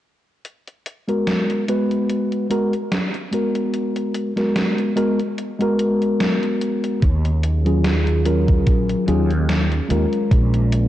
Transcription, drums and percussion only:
0.45 closed hi-hat
0.68 closed hi-hat
0.86 closed hi-hat
1.09 closed hi-hat
1.27 snare, closed hi-hat
1.50 closed hi-hat
1.68 closed hi-hat
1.91 closed hi-hat
2.09 closed hi-hat
2.32 closed hi-hat
2.51 closed hi-hat
2.73 closed hi-hat
2.92 snare, closed hi-hat
3.14 closed hi-hat
3.33 closed hi-hat
3.55 closed hi-hat
3.74 closed hi-hat
3.96 closed hi-hat
4.15 closed hi-hat
4.37 snare, closed hi-hat
4.56 snare, closed hi-hat
4.78 closed hi-hat
4.97 closed hi-hat
5.20 closed hi-hat
5.38 closed hi-hat
5.61 closed hi-hat
5.79 closed hi-hat
6.02 closed hi-hat
6.20 snare, closed hi-hat
6.43 closed hi-hat
6.61 closed hi-hat
6.84 closed hi-hat
7.02 kick, closed hi-hat
7.25 closed hi-hat
7.43 closed hi-hat
7.66 closed hi-hat
7.84 snare, closed hi-hat
8.07 closed hi-hat
8.25 closed hi-hat
8.48 kick, closed hi-hat
8.67 kick, closed hi-hat
8.89 closed hi-hat
9.08 closed hi-hat
9.31 closed hi-hat
9.49 snare, closed hi-hat
9.72 closed hi-hat
9.90 closed hi-hat
10.13 closed hi-hat
10.31 kick, closed hi-hat
10.54 closed hi-hat
10.72 closed hi-hat

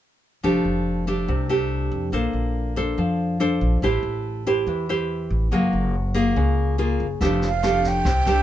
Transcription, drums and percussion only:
7.21 kick, snare
7.42 snare
7.63 cross-stick, snare
7.84 kick, snare
8.05 kick, cross-stick, snare
8.26 snare

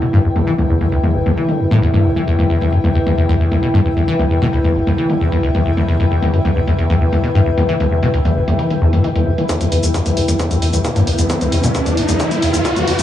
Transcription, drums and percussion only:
0.02 closed hi-hat
0.13 closed hi-hat, mid tom
0.36 closed hi-hat, mid tom
0.47 closed hi-hat
0.58 closed hi-hat, mid tom
0.81 closed hi-hat, mid tom
0.92 closed hi-hat
1.03 closed hi-hat, mid tom
1.26 closed hi-hat, mid tom
1.37 closed hi-hat
1.49 closed hi-hat, mid tom
1.71 closed hi-hat, mid tom
1.82 closed hi-hat
1.94 closed hi-hat, mid tom
2.16 closed hi-hat, mid tom
2.27 closed hi-hat
2.39 closed hi-hat, mid tom
2.61 closed hi-hat, mid tom
2.73 closed hi-hat
2.84 closed hi-hat, mid tom
3.07 closed hi-hat, mid tom
3.18 closed hi-hat
3.29 closed hi-hat, mid tom
3.52 closed hi-hat, mid tom
3.63 closed hi-hat
3.74 closed hi-hat, mid tom
3.97 closed hi-hat, mid tom
4.08 closed hi-hat
4.19 closed hi-hat, mid tom
4.42 closed hi-hat, mid tom
4.53 closed hi-hat
4.64 closed hi-hat, mid tom
4.87 closed hi-hat, mid tom
4.98 closed hi-hat
5.10 closed hi-hat, mid tom
5.32 closed hi-hat, mid tom
5.43 closed hi-hat
5.55 closed hi-hat, mid tom
5.77 closed hi-hat, mid tom
5.89 closed hi-hat
6.00 closed hi-hat, mid tom
6.22 closed hi-hat, mid tom
6.34 closed hi-hat
6.45 closed hi-hat, mid tom
6.67 closed hi-hat, mid tom
6.79 closed hi-hat
6.90 closed hi-hat, mid tom
7.13 closed hi-hat, mid tom
7.24 closed hi-hat
7.35 closed hi-hat, mid tom
7.58 closed hi-hat, mid tom
7.69 closed hi-hat
7.80 closed hi-hat, mid tom
8.03 closed hi-hat, mid tom
8.14 closed hi-hat
8.25 closed hi-hat, mid tom
8.48 closed hi-hat, mid tom
8.59 closed hi-hat
8.70 closed hi-hat, mid tom
8.93 closed hi-hat, mid tom
9.04 closed hi-hat
9.16 closed hi-hat, mid tom
9.38 closed hi-hat, mid tom
9.49 kick, closed hi-hat, shaker
9.61 closed hi-hat, mid tom, shaker
9.72 open hi-hat
9.83 closed hi-hat, mid tom, shaker
9.94 kick, closed hi-hat, shaker
10.06 closed hi-hat, mid tom, shaker
10.17 open hi-hat
10.28 closed hi-hat, mid tom, shaker
10.39 kick, closed hi-hat, shaker
10.51 closed hi-hat, mid tom, shaker
10.62 open hi-hat
10.73 closed hi-hat, mid tom, shaker
10.85 kick, closed hi-hat, shaker
10.96 closed hi-hat, mid tom, shaker
11.07 open hi-hat
11.19 closed hi-hat, mid tom, shaker
11.30 kick, closed hi-hat, shaker
11.41 closed hi-hat, mid tom, shaker
11.52 open hi-hat
11.64 closed hi-hat, mid tom, shaker
11.75 kick, closed hi-hat, shaker
11.86 closed hi-hat, mid tom, shaker
11.97 open hi-hat
12.09 closed hi-hat, mid tom, shaker
12.20 kick, closed hi-hat, shaker
12.31 closed hi-hat, mid tom, shaker
12.42 open hi-hat
12.54 closed hi-hat, mid tom, shaker
12.65 kick, closed hi-hat, shaker
12.76 closed hi-hat, mid tom, shaker
12.88 open hi-hat
12.99 closed hi-hat, mid tom, shaker

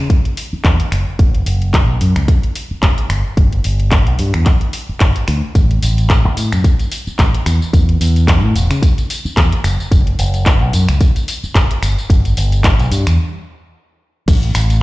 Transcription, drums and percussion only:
0.10 kick, closed hi-hat
0.25 closed hi-hat
0.37 open hi-hat
0.64 kick, clap, closed hi-hat
0.80 closed hi-hat
0.92 finger snap, open hi-hat
1.19 kick, closed hi-hat
1.35 closed hi-hat
1.46 open hi-hat
1.62 closed hi-hat
1.74 kick, clap, closed hi-hat
2.01 open hi-hat
2.16 finger snap, closed hi-hat
2.28 kick, closed hi-hat
2.43 closed hi-hat
2.55 open hi-hat
2.83 kick, clap, closed hi-hat
2.98 closed hi-hat
3.10 finger snap, open hi-hat
3.37 kick, closed hi-hat
3.53 closed hi-hat
3.64 open hi-hat
3.80 closed hi-hat
3.91 kick, clap, closed hi-hat
4.07 closed hi-hat
4.19 open hi-hat
4.34 finger snap, closed hi-hat
4.46 kick, clap, closed hi-hat
4.61 closed hi-hat
4.73 open hi-hat
5.00 kick, clap, closed hi-hat
5.16 closed hi-hat
5.28 finger snap, open hi-hat
5.55 kick, closed hi-hat, tambourine
5.71 closed hi-hat
5.83 open hi-hat, tambourine
5.98 closed hi-hat, tambourine
6.10 kick, clap, closed hi-hat, tambourine
6.37 open hi-hat, tambourine
6.52 finger snap, closed hi-hat, tambourine
6.64 kick, closed hi-hat, tambourine
6.79 closed hi-hat, tambourine
6.92 open hi-hat, tambourine
7.07 tambourine
7.19 kick, clap, closed hi-hat, tambourine
7.34 closed hi-hat
7.46 finger snap, open hi-hat, tambourine
7.62 tambourine
7.73 kick, closed hi-hat, tambourine
7.89 closed hi-hat
8.01 open hi-hat, tambourine
8.16 closed hi-hat, tambourine
8.28 kick, clap, closed hi-hat, tambourine
8.56 open hi-hat, tambourine
8.71 finger snap, closed hi-hat, tambourine
8.82 kick, closed hi-hat, tambourine
8.98 closed hi-hat, tambourine
9.10 open hi-hat, tambourine
9.26 tambourine
9.37 kick, clap, closed hi-hat, tambourine
9.52 closed hi-hat
9.64 finger snap, open hi-hat, tambourine
9.80 tambourine
9.91 kick, closed hi-hat, tambourine
10.07 closed hi-hat
10.19 open hi-hat, tambourine
10.34 closed hi-hat, tambourine
10.46 kick, clap, closed hi-hat, tambourine
10.73 open hi-hat, tambourine
10.89 finger snap, closed hi-hat, tambourine
11.01 kick, closed hi-hat, tambourine
11.16 closed hi-hat, tambourine
11.28 open hi-hat, tambourine
11.44 tambourine
11.55 kick, clap, closed hi-hat, tambourine
11.71 closed hi-hat
11.83 finger snap, open hi-hat, tambourine
11.98 tambourine
12.10 kick, closed hi-hat, tambourine
12.25 closed hi-hat, tambourine
12.37 open hi-hat, tambourine
12.52 closed hi-hat, tambourine
12.64 kick, clap, closed hi-hat, tambourine
12.80 closed hi-hat, tambourine
12.92 open hi-hat, tambourine
13.07 finger snap, closed hi-hat, tambourine
14.28 kick, closed hi-hat, crash, tambourine
14.43 closed hi-hat
14.55 finger snap, open hi-hat, tambourine
14.70 closed hi-hat, tambourine

